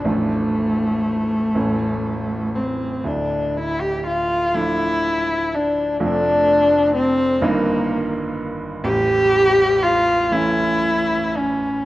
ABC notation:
X:1
M:6/8
L:1/16
Q:3/8=40
K:Dm
V:1 name="Cello"
A,8- A,2 C2 | D2 E G F2 E4 D2 | D4 C2 B,4 z2 | G4 F2 E4 ^C2 |]
V:2 name="Grand piano" clef=bass
[A,,,,A,,,F,A,D]6 [A,,,,A,,,E,A,^C]6 | [D,,,D,,]6 [F,A,D]6 | [F,,,F,,F,A,D]6 [G,,,G,,_E,B,_E]6 | [A,,,,A,,,]6 [E,A,^C]6 |]